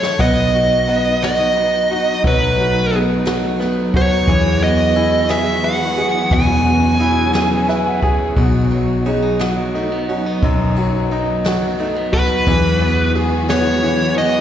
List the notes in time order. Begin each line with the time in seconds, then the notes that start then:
Already playing: F#1 E3 F#3 G#3 A3 C#4 E4 F#4 A4 C#5
0.03 snare
0.19 B1 F#3 B3 D#4 D#5, kick, crash
0.53 F#3 F#4, ride
0.88 B3 D#4, ride
1.22 F#3 F#4 D#5, snare, ride
1.57 B3, ride
1.90 D#4 F#4, ride
2.24 B1 F#3 A3 D#4 B4, kick, ride
2.58 F#3 F#4, ride
2.92 B3 D#4, ride
3.25 F#3 F#4, snare, ride
3.60 B3, snare, ride
3.94 C#4 F#4 C#5, kick, ride
4.11 D#4
4.27 E2 E3 F#3 G#3 B3 F#4 G#4, kick, ride
4.61 B3 D#5, ride
4.95 E4 G#4, ride
5.28 B3 G#4 E5, snare, ride
5.63 E4 B4 F#5, ride
5.98 G#4, ride
6.31 E2 B2 F#3 C#4 G#4 G#5, kick, ride
6.65 B3, ride
7.00 E4 G#4, ride
7.33 B3 G#4, snare, ride
7.68 E4 B4 E5, snare, ride
7.86 F#5
8.02 G#4 G#5, kick, ride
8.37 B1 B2 F#3 B3 D#4 F#4, kick, ride
8.70 F#3, ride
9.06 C#4 D#4 G#4, ride
9.22 D#4
9.39 F#3 F#4, snare, ride
9.74 A3 D#4, ride
9.92 B3
10.09 C#4 D#4 F#4, ride
10.26 D#4
10.42 B1 F#2 F#3 D#4, kick, ride
10.76 F#3, ride
11.11 D#4, ride
11.44 F#3 F#4, snare, ride
11.79 A3 D#4, ride
11.96 B3
12.13 D#4 F#4 B4, kick, ride
12.47 E2 E3 F#3 G#3 F#4 G#4, kick, ride
12.80 B3, ride
13.15 G#4, ride
13.48 B3 C#5, snare, ride
13.83 E3 E4, ride
14.17 B3 G#4 D#5, ride